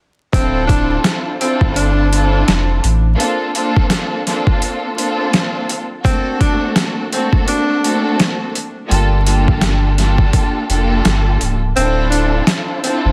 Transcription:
0.33 0.98 D1 loud
0.33 0.65 C4 medium
0.33 1.34 C4 medium
0.33 1.34 D4 medium
0.33 1.34 E4 medium
0.33 1.34 F4 medium
0.33 1.34 A4 loud
0.33 kick loud
0.33 closed hi-hat medium
0.67 1.00 D4 medium
0.67 kick medium
0.67 closed hi-hat medium
1.04 snare loud
1.04 closed hi-hat medium
1.40 2.07 C4 medium
1.40 1.60 C4 medium
1.40 2.07 D4 medium
1.40 2.07 E4 medium
1.40 2.08 F4 medium
1.40 2.08 A4 loud
1.40 closed hi-hat medium
1.61 2.43 G1 medium
1.61 kick medium
1.76 2.29 D4 medium
1.76 closed hi-hat medium
2.13 2.79 C4 loud
2.13 2.79 D4 medium
2.13 2.80 E4 medium
2.13 2.80 F4 medium
2.13 2.80 A4 loud
2.13 closed hi-hat medium
2.32 2.65 D4 medium
2.48 2.80 F1 loud
2.48 snare loud
2.48 closed hi-hat medium
2.84 3.16 A1 medium
2.84 closed hi-hat medium
3.16 3.51 A#3 medium
3.16 3.51 C4 medium
3.16 3.51 D4 medium
3.16 3.52 F4 medium
3.16 3.52 A4 loud
3.16 closed hi-hat medium
3.54 4.21 A#3 loud
3.54 4.21 C4 medium
3.54 4.21 D4 medium
3.54 4.22 F4 medium
3.54 4.22 A4 loud
3.54 closed hi-hat medium
3.77 kick medium
3.90 snare loud
3.90 closed hi-hat medium
4.25 4.93 A#3 medium
4.25 4.93 C4 medium
4.25 4.93 D4 medium
4.25 4.93 F4 medium
4.25 4.93 A4 medium
4.25 snare soft
4.25 closed hi-hat medium
4.47 kick medium
4.62 closed hi-hat medium
4.94 5.80 A#3 medium
4.94 5.80 C4 medium
4.94 5.81 D4 medium
4.94 5.81 F4 medium
4.94 5.81 A4 loud
4.94 closed hi-hat medium
5.33 snare loud
5.33 closed hi-hat medium
5.69 closed hi-hat medium
6.04 7.05 A3 medium
6.04 7.05 A#3 medium
6.04 6.37 C4 medium
6.04 7.05 C4 medium
6.04 7.05 D4 medium
6.04 7.05 F#4 medium
6.04 7.05 A4 loud
6.04 kick loud
6.04 closed hi-hat medium
6.41 6.73 D4 medium
6.41 kick medium
6.41 closed hi-hat medium
6.76 snare loud
6.76 closed hi-hat medium
7.11 7.78 A3 medium
7.11 7.78 A#3 medium
7.11 7.78 C4 medium
7.11 7.32 C4 medium
7.11 7.79 D4 medium
7.11 7.79 F#4 medium
7.11 7.79 A4 loud
7.11 closed hi-hat medium
7.33 kick medium
7.48 8.01 D4 medium
7.48 closed hi-hat loud
7.82 8.49 A3 loud
7.82 8.50 A#3 medium
7.82 8.50 C4 medium
7.82 8.50 D4 medium
7.82 8.50 F#4 medium
7.82 8.50 A4 loud
7.82 closed hi-hat medium
8.04 8.37 D4 medium
8.19 snare loud
8.19 closed hi-hat medium
8.55 closed hi-hat medium
8.88 10.30 G1 loud
8.88 9.22 A#3 medium
8.88 9.23 D4 medium
8.88 9.23 F4 medium
8.88 9.23 G4 medium
8.88 9.23 A4 loud
8.88 closed hi-hat medium
9.25 9.92 A#3 loud
9.25 9.92 D4 medium
9.25 9.93 F4 medium
9.25 9.93 G4 medium
9.25 9.93 A4 loud
9.25 closed hi-hat medium
9.48 kick medium
9.61 snare loud
9.61 closed hi-hat medium
9.98 10.65 A#3 medium
9.98 10.65 D4 medium
9.98 10.65 F4 medium
9.98 10.65 G4 medium
9.98 10.66 A4 loud
9.98 snare soft
9.98 closed hi-hat medium
10.18 kick medium
10.33 kick medium
10.33 closed hi-hat medium
10.69 11.01 F1 medium
10.69 11.53 A#3 loud
10.69 11.53 D4 medium
10.69 11.53 F4 medium
10.69 11.54 G4 medium
10.69 11.54 A4 loud
10.69 closed hi-hat medium
11.05 11.37 G1 loud
11.05 snare loud
11.05 closed hi-hat medium
11.41 11.73 C#1 medium
11.41 closed hi-hat medium
11.76 12.41 D1 loud
11.76 12.08 C4 medium
11.76 12.77 C4 medium
11.76 12.77 D4 medium
11.76 12.77 E4 medium
11.76 12.77 F4 medium
11.76 12.78 A4 loud
11.76 closed hi-hat medium
12.10 12.43 D4 medium
12.10 closed hi-hat medium
12.47 snare loud
12.47 closed hi-hat medium
12.83 13.12 C4 medium
12.83 13.03 C4 medium
12.83 13.12 D4 medium
12.83 13.12 E4 medium
12.83 13.12 F4 medium
12.83 13.12 A4 loud
12.83 closed hi-hat medium
13.05 13.12 G1 medium

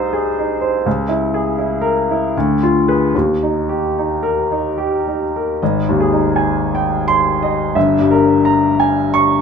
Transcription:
0.00 0.82 C2 soft
0.00 0.39 D#4 soft
0.00 0.13 G#4 soft
0.00 0.61 C5 soft
0.13 0.52 G#4 soft
0.39 0.77 D#4 soft
0.61 0.85 C5 soft
0.86 2.30 C#2 soft
1.09 1.48 E4 soft
1.34 1.73 G#4 soft
1.58 1.99 E4 soft
1.81 2.23 A#4 soft
2.11 2.36 E4 soft
2.37 3.12 D2 soft
2.63 3.04 F4 soft
2.88 3.12 G#4 soft
2.88 3.12 B4 soft
3.15 5.58 D#2 soft
3.43 3.86 D#4 soft
3.69 4.13 G4 soft
3.98 4.41 D#4 soft
4.23 4.67 A#4 soft
4.52 4.95 D#4 soft
4.78 5.23 G4 soft
5.08 5.51 D#4 soft
5.36 5.62 A#4 soft
5.62 7.73 G#1 soft
5.62 6.22 D#5 soft
5.89 6.27 D#2 soft
6.00 6.58 G#4 soft
6.13 6.50 D#4 soft
6.36 6.93 G#5 soft
6.75 7.08 G5 soft
7.08 7.63 C6 medium
7.43 7.77 D#5 soft
7.75 9.42 G1 soft
7.75 8.31 E5 soft
7.99 8.36 G2 soft
8.11 8.66 A#4 soft
8.45 8.99 A#5 soft
8.80 9.13 G#5 soft
9.14 9.42 C#6 medium

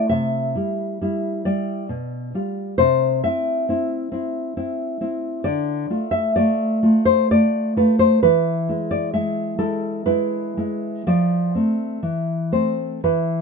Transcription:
0.09 0.54 C3 medium
0.09 1.41 E5 medium
0.55 1.00 G3 soft
0.55 1.01 E4 soft
1.01 1.45 G3 soft
1.01 1.45 E4 soft
1.45 1.86 G3 soft
1.45 1.86 E4 soft
1.45 2.74 D5 medium
1.89 2.32 B2 medium
2.34 2.74 G3 soft
2.34 2.75 F4 soft
2.78 3.22 C3 medium
2.78 3.20 C5 medium
3.24 3.68 C4 soft
3.24 3.68 E4 soft
3.24 4.09 E5 medium
3.69 4.11 C4 soft
3.69 4.12 E4 soft
4.12 4.56 C4 soft
4.12 4.56 E4 soft
4.57 5.00 C4 soft
4.57 5.00 E4 soft
5.01 5.42 C4 soft
5.01 5.42 E4 soft
5.44 5.89 D3 medium
5.44 6.10 D5 medium
5.90 6.36 A3 soft
5.90 6.36 F4 soft
6.11 6.35 E5 medium
6.36 6.82 A3 soft
6.36 6.82 F4 soft
6.36 7.03 D5 medium
6.83 7.30 A3 soft
6.83 7.31 F4 soft
7.05 7.29 C5 medium
7.31 7.75 A3 soft
7.31 7.76 F4 soft
7.31 7.75 D5 medium
7.76 8.19 A3 soft
7.76 8.19 F4 soft
7.76 7.99 B4 medium
7.99 8.22 C5 medium
8.23 8.68 E3 medium
8.23 8.89 B4 medium
8.69 9.13 G#3 soft
8.69 9.14 E4 soft
8.91 9.13 D5 medium
9.14 9.57 G#3 soft
9.14 9.57 E4 soft
9.14 9.58 E5 medium
9.59 10.06 G#3 soft
9.59 10.05 E4 soft
9.59 10.05 A4 medium
10.06 10.56 G#3 soft
10.06 10.57 E4 soft
10.06 11.02 B4 medium
10.57 11.03 G#3 soft
10.57 11.04 E4 soft
11.07 11.54 F3 medium
11.07 12.48 D5 medium
11.55 12.00 A3 soft
11.55 11.99 C4 soft
12.03 12.51 E3 medium
12.52 13.00 A3 soft
12.52 13.00 C4 soft
12.52 13.02 C5 medium
13.04 13.41 E3 soft
13.04 13.41 B4 medium

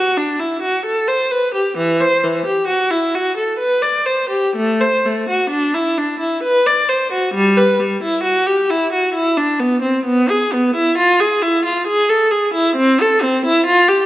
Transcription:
0.00 0.16 F#4 medium
0.17 0.40 D4 medium
0.40 0.62 E4 medium
0.62 0.84 F#4 medium
0.85 1.07 A4 medium
1.08 1.30 C5 medium
1.31 1.54 B4 medium
1.54 1.76 G4 medium
1.77 1.99 E3 medium
2.00 2.22 C5 medium
2.24 2.46 E3 medium
2.46 2.68 G4 medium
2.67 2.90 F#4 medium
2.90 3.13 E4 medium
3.15 3.37 F#4 medium
3.37 3.59 A4 soft
3.59 3.82 B4 medium
3.82 4.06 D5 medium
4.06 4.30 C5 medium
4.29 4.54 G4 medium
4.56 4.80 A3 medium
4.81 5.04 C5 medium
5.06 5.29 A3 medium
5.29 5.51 F#4 medium
5.50 5.74 D4 medium
5.74 5.98 E4 medium
5.98 6.21 D4 medium
6.20 6.43 E4 medium
6.43 6.65 B4 medium
6.66 6.89 D5 medium
6.89 7.11 C5 medium
7.12 7.33 F#4 medium
7.34 7.56 G3 medium
7.57 7.79 B4 medium
7.80 8.02 G3 medium
8.03 8.24 E4 medium
8.23 8.46 F#4 medium
8.46 8.69 G4 medium
8.70 8.92 E4 medium
8.93 9.14 F#4 medium
9.14 9.36 E4 medium
9.37 9.60 D4 medium
9.59 9.83 B3 medium
9.82 10.05 C4 medium
10.05 10.29 B3 medium
10.30 10.53 G#4 medium
10.53 10.76 B3 medium
10.75 10.98 E4 medium
10.98 11.20 F4 medium
11.20 11.43 G#4 medium
11.42 11.65 E4 medium
11.64 11.87 F4 medium
11.87 12.09 G#4 medium
12.10 12.32 A4 medium
12.31 12.54 G#4 medium
12.54 12.76 E4 medium
12.76 12.98 C4 medium
13.01 13.23 A4 medium
13.23 13.45 C4 medium
13.45 13.67 E4 medium
13.66 13.88 F4 medium
13.88 14.06 G4 medium

